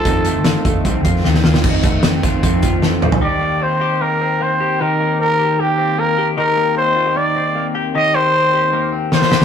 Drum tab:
CC |----------------|x---------------|----------------|----------------|
HH |x-x-x-x-x-x-----|--x-x-x-x-x-----|----------------|----------------|
SD |----o-------oooo|----o-o-----o---|----------------|----------------|
T2 |----------------|--------------o-|----------------|----------------|
FT |----------------|---------------o|----------------|----------------|
BD |o-----o-o-o-----|o-o---o-o-o-----|----------------|----------------|

CC |----------------|----------------|
HH |----------------|----------------|
SD |----------------|------------oooo|
T2 |----------------|----------------|
FT |----------------|----------------|
BD |----------------|----------------|